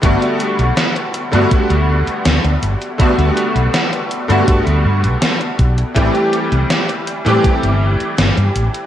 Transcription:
<<
  \new Staff \with { instrumentName = "Electric grand piano" } { \time 4/4 \key g \major \tempo 4 = 81 <d g a b fis'>4.~ <d g a b fis'>16 <d g a b fis'>2~ <d g a b fis'>16 | <d g a b fis'>4.~ <d g a b fis'>16 <d g a b fis'>2~ <d g a b fis'>16 | <e g a c' g'>4.~ <e g a c' g'>16 <e g a c' g'>2~ <e g a c' g'>16 | }
  \new Staff \with { instrumentName = "Fretless electric bass" } { \clef bass \time 4/4 \key g \major g,,16 r8 b,,16 r8. g,16 r16 d,8 r16 d,16 d,16 g,,16 r16 | r16 d,16 r16 b,,16 r8. g,16 g,,16 d,16 g,16 b,,16 r8 b,,16 r16 | a,,16 r8 c,16 r8. a,16 r16 g,,8 r16 g,,16 g,16 a,,16 r16 | }
  \new DrumStaff \with { instrumentName = "Drums" } \drummode { \time 4/4 <hh bd>16 hh16 hh16 hh16 <hh sn>16 hh16 hh16 hh16 <hh bd>16 hh8 hh16 <hh sn>16 hh16 hh16 hh16 | <hh bd>16 hh16 hh16 hh16 <hh sn>16 hh16 hh16 hh16 <hh bd>16 hh8 hh16 <hh sn>16 hh16 <hh bd>16 hh16 | <hh bd>16 hh16 hh16 hh16 <hh sn>16 hh16 hh16 hh16 <hh bd>16 hh8 hh16 <hh sn>16 hh16 hh16 hh16 | }
>>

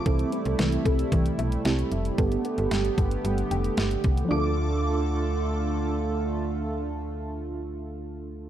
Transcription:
<<
  \new Staff \with { instrumentName = "Synth bell" } { \time 4/4 \key d \dorian \tempo 4 = 113 r1 | r1 | d'''2. r4 | r1 | }
  \new Staff \with { instrumentName = "FM electric piano" } { \time 4/4 \key d \dorian <c' e' a'>2. <c' e' g'>4 | <b g' a'>1 | <d' f' a'>1~ | <d' f' a'>1 | }
  \new Staff \with { instrumentName = "Synth pluck" } { \time 4/4 \key d \dorian e8 c'8 e8 a'8 e8 e''8 r4 | g8 b8 g8 a'8 g8 g''8 r4 | <f d' a'>1~ | <f d' a'>1 | }
  \new Staff \with { instrumentName = "Analog synth pad" } { \time 4/4 \key d \dorian <c g a e'>1 | <d b g'>1 | <d a f' a'>1~ | <d a f' a'>1 | }
  \new Staff \with { instrumentName = "FM bass" } { \clef bass \time 4/4 \key d \dorian c,8 r16 c,16 c,8 c,8 c,8 b,,8 c,8 f,,8 | g,,8 r16 g,,16 g,,8 g,,8 g,,8 f,,8 g,,8 c,8 | d,1~ | d,1 | }
  \new DrumStaff \with { instrumentName = "Drums" } \drummode { \time 4/4 <hh bd>16 hh16 hh16 hh16 <hh sn>16 hh16 <hh bd>16 hh16 <hh bd>16 hh16 hh16 hh16 <hh sn>16 hh16 hh16 hh16 | <hh bd>16 hh16 hh16 hh16 <hh sn>16 hh16 <hh bd>16 hh16 hh16 hh16 hh16 hh16 <hh sn>16 hh16 <hh bd>16 hh16 | r4 r4 r4 r4 | r4 r4 r4 r4 | }
>>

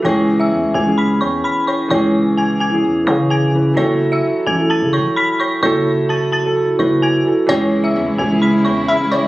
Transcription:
<<
  \new Staff \with { instrumentName = "Synth bell" } { \time 4/4 \key cis \minor \tempo 4 = 129 <cis'' cis'''>8. <e'' e'''>8. <gis'' gis'''>8 <b'' b'''>8 <cis'' cis'''>8 <b'' b'''>8 <cis'' cis'''>8 | <cis'' cis'''>4 <gis'' gis'''>8 <gis'' gis'''>8 r8 <cis'' cis'''>8 <gis'' gis'''>8 r8 | <cis'' cis'''>8. <e'' e'''>8. <gis'' gis'''>8 <a'' a'''>8 <cis'' cis'''>8 <b'' b'''>8 <cis'' cis'''>8 | <cis'' cis'''>4 <a'' a'''>8 <a'' a'''>8 r8 <cis'' cis'''>8 <gis'' gis'''>8 r8 |
<cis'' cis'''>8. <e'' e'''>8. <gis'' gis'''>8 <b'' b'''>8 <cis'' cis'''>8 <b'' b'''>8 <cis'' cis'''>8 | }
  \new Staff \with { instrumentName = "Synth pluck" } { \time 4/4 \key cis \minor r1 | r1 | r1 | r1 |
cis''2 r4 e''8 d''8 | }
  \new Staff \with { instrumentName = "Grand piano" } { \time 4/4 \key cis \minor <e cis' gis'>4. r16 <e cis' gis'>4.~ <e cis' gis'>16 r8 | <e cis' gis'>4. r16 <e cis' gis'>8. <e cis' gis'>4 <e cis' b'>8 | <fis e' a'>4. r16 <fis e' a'>4.~ <fis e' a'>16 r8 | <fis e' a'>4. r16 <fis e' a'>8. <fis e' b'>4 <fis e' a'>8 |
<e cis' gis'>4. r16 <e cis' gis'>4.~ <e cis' gis'>16 r8 | }
  \new Staff \with { instrumentName = "String section" } { \clef bass \time 4/4 \key cis \minor r1 | r1 | r1 | r1 |
<cis gis e'>1 | }
  \new Staff \with { instrumentName = "808-style bass" } { \clef bass \time 4/4 \key cis \minor cis,4 e,16 cis,16 cis,4 e,8 r4 | cis,2 e,8 cis4. | fis,,4 r8 a,,8. cis16. a,,16. r4 | fis,,2~ fis,,8 fis,,4 r8 |
cis,4 e,16 cis,16 cis,4 e,8 r4 | }
>>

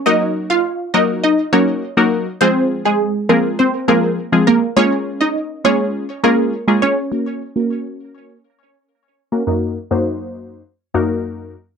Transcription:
<<
  \new Staff \with { instrumentName = "Synth pluck" } { \time 4/4 \key ges \lydian \tempo 4 = 102 <ees' ees''>8 r16 <f' f''>8 r16 <ees' ees''>16 r16 <ees' ees''>8 <des' des''>16 r4 r16 | <c' c''>8 r16 <aes aes'>8 r16 <bes bes'>16 r16 <c' c''>8 <bes bes'>16 r8. <bes bes'>16 r16 | <des' des''>8 r16 <ees' ees''>8 r16 <des' des''>16 r8. <bes bes'>16 r8. <des' des''>16 r16 | r1 |
r1 | }
  \new Staff \with { instrumentName = "Synth stab" } { \time 4/4 \key ges \lydian <ges bes ees' ges' bes'>4 r8 <ges bes ees' ges' bes'>8. r16 <ges bes ees' ges' bes'>8 r16 <ges bes ees' ges' bes'>8 r16 | <f aes c' f' aes'>4 r8 <f aes c' f' aes'>8. r16 <f aes c' f' aes'>8 r16 <f aes c' f' aes'>8 r16 | <aes bes des' f' aes'>4 r8 <aes bes des' f' aes'>8. r16 <aes bes des' f' aes'>8 r16 <aes bes des' f' aes'>8 r16 | <bes des' ges' bes'>8 r16 <bes des' ges' bes'>4. r4. <bes des' ges' bes'>16 |
<ges, bes ees' ges' bes'>8 r16 <ges, bes ees' ges' c''>4~ <ges, bes ees' ges' c''>16 r8 <ges, bes ees' ges' bes'>4 r8 | }
>>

